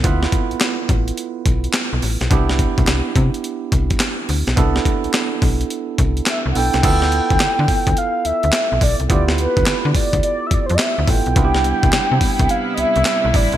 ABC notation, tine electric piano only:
X:1
M:4/4
L:1/8
Q:"Swing 16ths" 1/4=106
K:Ddor
V:1 name="Tine electric piano"
[B,EFB]8 | [B,DEG]8 | [B,DEA]6- [B,DEA] [B,DEA] | [B,EFA]8 |
[B,EFG]6- [B,EFG] [B,EFA] | [B,DEFG]8 |]